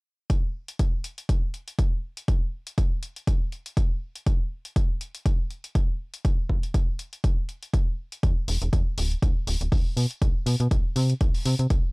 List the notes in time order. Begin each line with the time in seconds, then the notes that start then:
0.30 kick, closed hi-hat
0.68 closed hi-hat
0.79 kick, closed hi-hat
1.04 closed hi-hat
1.18 closed hi-hat
1.29 kick, closed hi-hat
1.54 closed hi-hat
1.68 closed hi-hat
1.79 kick, closed hi-hat
2.17 closed hi-hat
2.28 kick, closed hi-hat
2.67 closed hi-hat
2.78 kick, closed hi-hat
3.03 closed hi-hat
3.16 closed hi-hat
3.27 kick, closed hi-hat
3.52 closed hi-hat
3.66 closed hi-hat
3.77 kick, closed hi-hat
4.16 closed hi-hat
4.26 kick, closed hi-hat
4.65 closed hi-hat
4.76 kick, closed hi-hat
5.01 closed hi-hat
5.15 closed hi-hat
5.26 kick, closed hi-hat
5.50 closed hi-hat
5.64 closed hi-hat
5.75 kick, closed hi-hat
6.14 closed hi-hat
6.25 kick, closed hi-hat
6.50 kick
6.63 closed hi-hat
6.74 kick, closed hi-hat
6.99 closed hi-hat
7.13 closed hi-hat
7.24 kick, closed hi-hat
7.49 closed hi-hat
7.63 closed hi-hat
7.74 kick, closed hi-hat
8.12 closed hi-hat
8.23 E2, kick, closed hi-hat
8.48 E1, open hi-hat
8.62 E1, closed hi-hat
8.73 E2, kick, closed hi-hat
8.98 D1, open hi-hat
9.11 closed hi-hat
9.22 D2, kick, closed hi-hat
9.47 D1, open hi-hat
9.61 D1, closed hi-hat
9.72 D2, kick, open hi-hat
9.97 B2, open hi-hat
10.11 closed hi-hat
10.22 B1, kick, closed hi-hat
10.46 B2, open hi-hat
10.60 B2, closed hi-hat
10.71 B1, kick, closed hi-hat
10.96 C3, open hi-hat
11.10 closed hi-hat
11.21 C2, kick, closed hi-hat
11.34 open hi-hat
11.45 C3, open hi-hat
11.59 C3, closed hi-hat
11.70 C2, kick, closed hi-hat